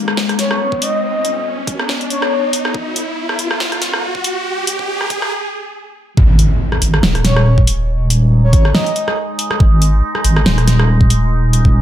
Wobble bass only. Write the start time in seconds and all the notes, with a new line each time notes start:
Already playing: G#1
0.17 D#1
1.67 G#1
2.75 G#1
3.39 G#1
3.60 D#1
5.10 G#1
6.17 G#1
6.82 G#1
7.03 D#1
8.53 G#1
9.60 G#1
10.25 G#1
10.46 D#1